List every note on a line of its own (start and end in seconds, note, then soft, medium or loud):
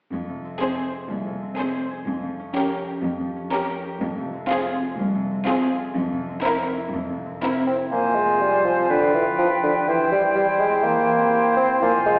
0.12 0.51 F2 soft
0.12 1.09 F2 soft
0.29 1.25 C3 soft
0.45 1.41 C4 soft
0.60 0.98 C4 soft
0.60 0.97 G#4 soft
0.60 0.92 G#4 soft
0.60 0.98 C5 soft
0.77 1.73 C5 soft
0.94 1.57 G#4 soft
1.10 1.48 C2 soft
1.10 2.06 F2 soft
1.26 2.09 C3 soft
1.43 2.09 C4 soft
1.58 1.95 C4 soft
1.58 1.90 G#4 soft
1.58 1.95 G#4 soft
1.58 1.95 C5 soft
1.74 2.09 C5 soft
1.91 2.09 G#4 soft
2.07 2.46 F2 soft
2.07 3.03 F2 soft
2.23 3.19 F3 soft
2.40 3.35 C#4 soft
2.55 2.92 C#4 soft
2.55 2.92 G4 soft
2.55 2.87 G4 soft
2.55 2.92 A#4 soft
2.71 3.67 A#4 soft
2.88 3.51 G4 soft
3.04 3.43 F2 soft
3.04 4.00 F2 soft
3.20 5.97 F3 soft
3.36 4.03 C#4 soft
3.52 3.89 C#4 soft
3.52 3.89 G4 soft
3.52 3.84 G4 soft
3.52 3.89 A#4 soft
3.69 4.03 A#4 soft
3.85 4.03 G4 soft
4.01 4.98 F2 soft
4.01 4.40 F2 soft
4.18 5.14 C3 soft
4.34 5.30 C4 soft
4.49 4.87 C4 soft
4.49 4.86 F4 soft
4.49 4.81 F4 soft
4.49 4.87 G#4 soft
4.67 5.62 G#4 soft
4.82 5.46 F4 soft
4.99 5.37 C2 medium
4.99 5.95 F2 soft
5.15 5.98 C3 soft
5.31 6.27 C4 soft
5.47 5.83 C4 soft
5.47 5.78 F4 soft
5.47 5.83 F4 soft
5.47 5.83 G#4 soft
5.63 5.97 G#4 soft
5.79 5.98 F4 soft
5.96 6.34 F2 medium
5.96 6.92 F2 soft
6.12 7.08 C3 soft
6.29 7.25 C4 soft
6.45 6.81 C4 soft
6.45 6.76 E4 soft
6.45 6.81 E4 soft
6.45 6.81 A#4 soft
6.61 7.57 A#4 soft
6.77 7.41 E4 soft
6.93 7.32 F2 medium
6.93 7.91 F2 soft
7.10 7.94 C3 soft
7.26 8.23 C4 soft
7.42 7.80 C4 soft
7.42 7.74 E4 soft
7.42 7.80 E4 soft
7.42 7.79 A#4 soft
7.59 7.94 A#4 soft
7.67 7.78 C4 medium
7.75 7.94 E4 soft
7.91 8.88 F2 soft
7.91 8.17 A#3 soft
7.91 9.83 F4 soft
7.91 8.91 C5 soft
7.91 8.92 G#5 soft
8.16 8.42 G#3 soft
8.25 8.72 C4 soft
8.41 8.64 G3 soft
8.41 9.89 F4 soft
8.57 8.91 C5 soft
8.65 8.89 F3 medium
8.74 8.92 C4 soft
8.90 9.89 F2 soft
8.90 9.14 D3 medium
8.90 9.87 B4 soft
8.90 11.82 G5 soft
9.06 9.89 F3 soft
9.14 9.25 E3 soft
9.22 9.70 D4 soft
9.39 9.50 F3 medium
9.39 10.34 G4 soft
9.54 9.89 B4 soft
9.64 9.74 D3 soft
9.71 9.89 D4 soft
9.87 10.83 E2 soft
9.87 10.11 E3 soft
9.87 11.78 E4 soft
9.87 12.19 C5 soft
10.03 10.99 E3 soft
10.12 10.23 G3 soft
10.19 10.66 C4 soft
10.35 10.47 G3 medium
10.35 11.32 G4 soft
10.52 11.48 C5 soft
10.60 10.86 G#3 medium
10.68 11.15 C4 soft
10.84 11.83 E2 soft
10.84 11.56 A#3 medium
11.00 11.83 E3 soft
11.16 11.64 C4 soft
11.33 11.84 G4 soft
11.49 12.19 C5 soft
11.57 11.68 C4 soft
11.65 12.13 C4 soft
11.81 12.19 F2 soft
11.81 11.93 A#3 medium
11.81 12.19 F4 soft
11.81 12.19 G#5 soft
11.98 12.19 C3 soft
12.06 12.17 G#3 soft
12.14 12.19 C4 soft